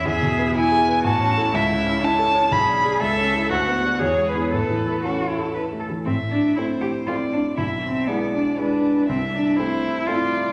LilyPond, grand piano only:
\new Staff \with { instrumentName = "Grand piano" } { \time 3/4 \key a \major \tempo 4 = 120 \tuplet 3/2 { e,8 b,8 b8 e'8 gis'8 b'8 a,,8 cis'8 <e' a'>8 } | \tuplet 3/2 { cis,8 cis8 cis'8 e'8 a'8 cis''8 b,,8 d'8 <d' gis'>8 } | \tuplet 3/2 { cis,8 cis'8 <e' a'>8 d,8 b8 <d' fis'>8 e,8 gis8 <b e'>8 } | \tuplet 3/2 { a,8 e8 a8 cis'8 e'8 a'8 e'8 a8 e8 } |
\key a \minor a,4 <a c' e'>4 <a c' e'>4 | b,,4 <gis d' e'>4 <gis d' e'>4 | c,4 <a c' e'>4 <a c' e'>4 | }